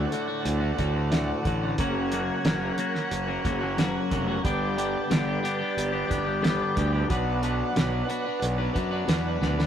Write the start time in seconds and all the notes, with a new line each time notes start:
Already playing: D2 A2 D3 A3 F#4 A4 D5 F#5
0.12 A2 D3 A3 F#4, closed hi-hat
0.28 D3 A3 F#4
0.45 D2, closed hi-hat
0.60 D3 A3 F#4
0.78 D2 A2 D3 A3 F#4, kick, closed hi-hat
0.95 D3 A3 F#4
1.11 D2 A2 D3 A3 F#4, snare, closed hi-hat
1.45 A1 A2 D3 A3 F#4, kick, closed hi-hat
1.61 D3 A3 F#4
1.78 F#1 F#2 C#3 F#3 A#3 C#4 F#4 A#4 C#5, kick, closed hi-hat
2.12 F#3 A#3 C#4 F#4, closed hi-hat
2.44 F#1 F#2 C#3 F#3 A#3 C#4 F#4, snare, closed hi-hat
2.61 F#3 A#3 C#4 F#4
2.78 F#3 A#3 C#4 F#4, closed hi-hat
2.94 F#3 A#3 C#4 F#4, snare
3.11 F#1, closed hi-hat
3.27 F#3 A#3 C#4 F#4
3.44 F#1 F#3 A#3 C#4 F#4, kick, closed hi-hat
3.61 F#3 A#3 C#4 F#4
3.77 F#2 C#3 F#3 A#3 C#4 F#4, snare, closed hi-hat
4.11 F1 F#3 A#3 C#4 F#4, kick, closed hi-hat
4.28 F#3 A#3 C#4 F#4
4.43 G1 G2 D3 G3 B3 D4 G4 B4 D5 G5, kick, closed hi-hat
4.77 G3 B3 D4 G4, closed hi-hat
5.10 G1 G2 D3 G3 B3 D4 G4, snare, closed hi-hat
5.26 G3 B3 D4 G4
5.43 G3 B3 D4 G4, closed hi-hat
5.58 G3 B3 D4 G4
5.77 G1, closed hi-hat
5.92 G3 B3 D4 G4
6.08 G1 G3 B3 D4 G4, kick, closed hi-hat
6.25 G3 B3 D4 G4
6.42 G2 D3 G3 B3 D4 G4, snare, closed hi-hat
6.75 D2 G3 B3 D4 G4, kick, closed hi-hat
6.93 G3 B3 D4 G4
7.09 B1 B2 F#3 B3 D4 F#4 B4 D5 F#5, kick, closed hi-hat
7.43 B3 D4 F#4 B4, closed hi-hat
7.76 B1 B2 F#3 B3 D4 F#4 B4, snare, closed hi-hat
7.92 B3 D4 F#4 B4
8.08 B3 D4 F#4 B4, closed hi-hat
8.25 B3 D4 F#4 B4
8.42 B1, closed hi-hat
8.58 B3 D4 F#4 B4
8.74 F#2 B3 D4 F#4 B4, kick, closed hi-hat
8.91 B3 D4 F#4 B4
9.07 E2 B2 F#3 B3 D4 F#4 B4, snare, closed hi-hat
9.41 D2 B3 D4 F#4 B4, snare
9.58 B3 D4 F#4 B4, snare